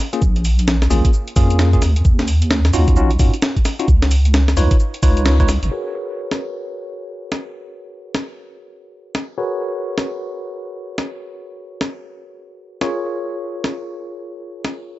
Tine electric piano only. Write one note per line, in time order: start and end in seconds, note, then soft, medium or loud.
0.13 0.21 A#3 medium
0.13 0.21 C#4 medium
0.13 0.21 F4 medium
0.13 0.21 G#4 medium
0.90 1.09 A#3 medium
0.90 1.09 C#4 medium
0.90 1.09 F4 medium
0.90 1.09 G#4 medium
1.36 1.70 A#3 medium
1.36 1.70 C#4 medium
1.36 1.70 F4 medium
1.36 1.70 G#4 loud
1.73 1.81 A#3 medium
1.73 1.81 C#4 medium
1.73 1.81 F4 medium
1.73 1.81 G#4 medium
2.73 2.94 C#4 medium
2.73 2.94 D#4 medium
2.73 2.94 F4 medium
2.73 2.94 F#4 medium
2.96 3.10 C#4 medium
2.96 3.10 D#4 medium
2.96 3.10 F4 medium
2.96 3.10 F#4 medium
3.19 3.33 C#4 medium
3.19 3.33 D#4 medium
3.19 3.33 F4 medium
3.19 3.33 F#4 medium
3.79 3.87 C#4 medium
3.79 3.87 D#4 medium
3.79 3.87 F4 medium
3.79 3.87 F#4 medium
4.57 4.76 D#4 medium
4.57 4.76 F4 medium
4.57 4.76 B4 medium
4.57 4.76 C#5 medium
5.03 5.36 D#4 medium
5.03 5.36 F4 medium
5.03 5.36 B4 medium
5.03 5.36 C#5 loud
5.40 5.48 D#4 medium
5.40 5.48 F4 medium
5.40 5.48 B4 medium
5.40 5.48 C#5 medium
5.71 9.36 F#4 medium
5.71 9.36 G#4 medium
5.71 9.36 A#4 medium
5.71 9.36 B4 medium
5.71 9.36 C#5 medium
9.38 12.79 F#4 medium
9.38 12.79 G#4 medium
9.38 12.79 A#4 medium
9.38 12.79 B4 medium
9.38 12.79 C#5 medium
12.81 14.99 F4 medium
12.81 14.99 G#4 medium
12.81 14.99 A#4 medium
12.81 14.99 C#5 medium